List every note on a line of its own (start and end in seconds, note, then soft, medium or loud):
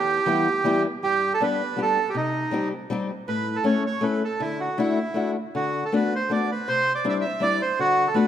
0.00 0.18 E2 medium
0.00 0.83 G4 loud
0.26 0.46 E3 medium
0.26 0.47 G3 medium
0.26 0.47 B3 medium
0.26 0.47 E4 medium
0.26 0.48 G4 medium
0.64 0.85 E3 medium
0.64 0.85 G3 medium
0.64 0.85 B3 medium
0.64 0.85 E4 medium
0.64 0.86 G4 medium
1.03 1.31 G2 medium
1.03 1.33 G4 loud
1.34 1.42 A4 medium
1.40 1.60 G3 medium
1.40 1.60 B3 medium
1.40 1.61 D4 medium
1.40 1.61 G4 medium
1.40 1.80 B4 medium
1.76 1.97 G3 medium
1.76 1.97 B3 soft
1.76 1.98 D4 soft
1.76 1.98 G4 medium
1.82 2.09 A4 medium
2.10 2.17 G4 medium
2.15 2.43 C3 medium
2.15 2.69 D#4 medium
2.51 2.71 G3 medium
2.51 2.72 C4 medium
2.51 2.72 D#4 medium
2.51 2.73 G4 medium
2.90 3.09 G3 medium
2.90 3.10 C4 medium
2.90 3.10 D#4 medium
2.90 3.11 G4 medium
3.28 3.56 A2 medium
3.28 3.57 B4 loud
3.56 3.65 A4 medium
3.64 3.84 A3 medium
3.64 3.84 C#4 medium
3.64 3.84 E4 soft
3.64 3.85 A4 medium
3.64 3.83 C#5 medium
3.87 4.04 C#5 medium
4.01 4.21 A3 medium
4.01 4.22 C#4 soft
4.01 4.22 E4 soft
4.01 4.22 A4 soft
4.01 4.23 B4 medium
4.25 4.41 A4 medium
4.40 4.68 D3 medium
4.40 4.61 E4 medium
4.60 4.78 F#4 medium
4.77 4.97 A3 medium
4.77 4.98 D4 soft
4.77 5.31 E4 medium
4.77 4.98 E4 medium
4.77 4.98 F#4 medium
5.14 5.34 A3 medium
5.14 5.35 D4 medium
5.14 5.35 E4 soft
5.14 5.36 F#4 medium
5.55 5.83 D3 medium
5.55 5.84 F#4 medium
5.85 5.93 A4 medium
5.92 6.12 A3 medium
5.92 6.12 B3 medium
5.92 6.12 D4 medium
5.92 6.12 F#4 medium
5.92 6.14 B4 medium
6.15 6.32 C5 medium
6.29 6.49 A3 medium
6.29 6.49 B3 soft
6.29 6.49 D4 soft
6.29 6.50 F#4 medium
6.29 6.51 D5 medium
6.52 6.69 B4 medium
6.68 6.95 C3 medium
6.68 6.93 C5 loud
6.95 7.06 D5 medium
7.04 7.23 G3 medium
7.04 7.24 C4 medium
7.04 7.24 D4 medium
7.04 7.24 E4 medium
7.09 7.18 D5 medium
7.09 7.14 E5 medium
7.21 7.43 E5 loud
7.40 7.60 G3 medium
7.40 7.60 C4 soft
7.40 7.60 D4 soft
7.40 7.61 E4 medium
7.40 7.61 D5 loud
7.62 7.79 C5 medium
7.79 8.06 D3 medium
7.79 8.08 F#4 loud
8.07 8.16 A4 medium
8.14 8.28 A3 medium
8.14 8.28 B3 medium
8.14 8.28 D4 medium
8.14 8.28 F#4 medium
8.14 8.28 B4 medium